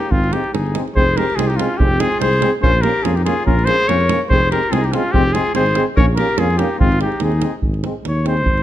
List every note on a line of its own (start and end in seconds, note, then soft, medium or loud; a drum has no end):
0.00 0.13 D#4 medium
0.00 0.13 G4 medium
0.11 0.34 G#1 medium
0.11 0.33 C4 medium
0.11 0.35 F4 medium
0.11 davul low medium
0.24 davul high soft
0.32 0.42 G#3 medium
0.32 0.41 C4 medium
0.32 0.52 D#4 medium
0.32 0.54 G4 medium
0.32 davul high medium
0.44 davul high soft
0.53 0.77 G1 medium
0.53 0.83 D#4 medium
0.53 0.84 G#4 medium
0.53 davul high medium
0.66 davul high soft
0.74 0.82 G#3 medium
0.74 0.84 C4 medium
0.74 davul high medium
0.88 davul high soft
0.95 1.18 F1 medium
0.95 1.04 G#3 soft
0.95 1.04 C4 medium
0.95 1.20 G#4 medium
0.95 1.19 C5 loud
0.95 davul low medium
1.17 1.25 G#3 medium
1.17 1.26 C4 soft
1.17 1.39 G4 medium
1.17 1.37 A#4 medium
1.17 davul high medium
1.30 davul high soft
1.36 1.60 C2 medium
1.36 1.47 G#3 medium
1.36 1.45 C4 medium
1.36 1.51 F4 medium
1.36 1.49 G#4 medium
1.36 davul high medium
1.47 1.63 D#4 medium
1.47 1.58 G4 medium
1.47 davul high soft
1.56 1.67 G#3 medium
1.56 1.67 C4 medium
1.56 1.79 F4 medium
1.56 davul high medium
1.62 1.82 C#4 medium
1.77 2.03 F1 medium
1.77 1.87 G#3 medium
1.77 1.87 C4 medium
1.77 2.03 C4 medium
1.77 2.02 G4 loud
1.77 davul low medium
1.99 2.07 G#3 medium
1.99 2.08 C4 medium
1.99 2.22 F4 medium
1.99 2.19 G#4 loud
1.99 davul high medium
2.12 davul high soft
2.19 2.44 C2 medium
2.19 2.28 G#3 medium
2.19 2.28 C4 medium
2.19 2.52 G#4 medium
2.19 2.51 C5 medium
2.19 davul high medium
2.33 davul high soft
2.40 2.49 G#3 medium
2.40 2.50 C4 medium
2.40 davul high medium
2.62 2.86 A#1 loud
2.62 2.71 A#3 medium
2.62 2.71 C#4 medium
2.62 2.84 F4 medium
2.62 2.83 C5 loud
2.62 davul low medium
2.82 2.92 A#3 medium
2.82 2.92 C#4 medium
2.82 3.07 G4 medium
2.82 3.05 A#4 loud
2.82 davul high medium
3.03 3.28 F2 medium
3.03 3.13 A#3 medium
3.03 3.12 C#4 medium
3.03 3.18 F4 medium
3.03 3.17 G#4 medium
3.03 davul high medium
3.16 3.25 D#4 medium
3.16 3.23 G4 medium
3.16 davul high soft
3.24 3.34 A#3 medium
3.24 3.34 C#4 medium
3.24 3.45 F4 medium
3.24 3.44 G#4 medium
3.24 davul high medium
3.46 3.70 A#1 medium
3.46 3.55 A#3 medium
3.46 3.54 C#4 medium
3.46 3.69 F4 medium
3.46 3.66 A#4 loud
3.46 davul low medium
3.59 davul high soft
3.65 3.76 A#3 medium
3.65 3.75 C#4 soft
3.65 3.90 G#4 medium
3.65 3.89 C5 loud
3.65 davul high medium
3.80 davul high soft
3.88 4.12 F2 medium
3.88 3.97 A#3 medium
3.88 3.97 C#4 medium
3.88 4.21 A#4 medium
3.88 4.20 C#5 loud
3.88 davul high medium
4.01 davul high soft
4.09 4.19 A#3 medium
4.09 4.19 C#4 medium
4.09 davul high medium
4.22 davul high soft
4.29 4.54 F1 loud
4.29 4.39 C4 medium
4.29 4.49 G#4 medium
4.29 4.49 C5 loud
4.29 davul low medium
4.33 4.41 G#3 medium
4.50 4.61 G#3 soft
4.50 4.59 C4 medium
4.50 4.71 G4 medium
4.50 4.74 A#4 loud
4.50 davul high medium
4.63 davul high soft
4.69 4.95 C2 medium
4.69 4.79 C4 medium
4.69 4.83 F4 medium
4.69 4.87 G#4 medium
4.69 davul high medium
4.74 4.82 G#3 medium
4.82 4.93 D#4 medium
4.82 4.95 G4 medium
4.82 davul high soft
4.92 5.03 G#3 medium
4.92 5.02 C4 medium
4.92 5.18 C#4 medium
4.92 5.13 F4 medium
4.92 davul high medium
5.12 5.37 F1 medium
5.12 5.23 G#3 medium
5.12 5.22 C4 medium
5.12 5.35 G4 loud
5.12 davul low medium
5.16 5.36 C4 medium
5.33 5.43 G#3 medium
5.33 5.42 C4 medium
5.33 5.54 F4 medium
5.33 5.55 G#4 medium
5.33 davul high medium
5.47 davul high soft
5.54 5.79 G#1 medium
5.54 5.64 G#3 medium
5.54 5.64 C4 medium
5.54 5.85 G#4 medium
5.54 5.85 C5 medium
5.54 davul high medium
5.66 davul high soft
5.75 5.84 G#3 medium
5.75 5.84 C4 medium
5.75 davul high medium
5.96 6.20 A#1 medium
5.96 6.06 A#3 medium
5.96 6.06 C#4 medium
5.96 6.06 A#4 medium
5.96 6.06 C#5 loud
5.96 davul low medium
6.16 6.27 A#3 medium
6.16 6.26 C#4 medium
6.16 6.41 G4 medium
6.16 6.40 A#4 loud
6.16 davul high medium
6.29 davul high soft
6.38 6.61 F2 medium
6.38 6.48 A#3 medium
6.38 6.47 C#4 medium
6.38 6.62 F4 medium
6.38 6.59 G#4 medium
6.38 davul high medium
6.50 davul high soft
6.58 6.69 A#3 medium
6.58 6.67 C#4 medium
6.58 6.80 D#4 medium
6.58 6.79 G4 medium
6.58 davul high medium
6.79 7.03 G#1 loud
6.79 6.89 G#3 medium
6.79 6.88 C4 medium
6.79 7.00 C4 medium
6.79 6.99 F4 loud
6.79 davul low loud
6.92 davul high soft
7.01 7.09 G#3 medium
7.01 7.10 C4 soft
7.01 7.25 D#4 medium
7.01 7.24 G4 medium
7.01 davul high medium
7.12 davul high soft
7.20 7.44 D#2 medium
7.20 7.30 C4 medium
7.20 7.55 G#4 medium
7.20 davul high medium
7.24 7.32 G#3 medium
7.24 7.56 D#4 medium
7.32 davul high soft
7.42 7.52 G#3 medium
7.42 7.51 C4 soft
7.42 davul high medium
7.62 7.86 G#1 medium
7.62 davul low medium
7.74 davul high soft
7.84 7.94 G#3 medium
7.84 7.93 C4 soft
7.84 davul high medium
8.05 8.48 D#2 medium
8.05 8.26 C#5 medium
8.05 davul high medium
8.25 8.34 G#3 medium
8.25 8.34 C4 medium
8.25 8.63 C5 loud
8.25 davul high medium
8.37 davul high soft
8.46 8.63 G#1 medium
8.46 davul low medium
8.57 davul high soft